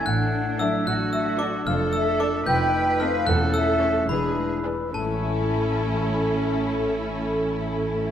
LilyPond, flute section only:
\new Staff \with { instrumentName = "Flute section" } { \time 6/8 \key a \major \tempo 4. = 74 fis''4 e''8 fis''8 e''8 d''8 | f''8 e''8 d''8 g''4 f''8 | fis''8 e''4 b'4. | a'2.~ |
a'2. | }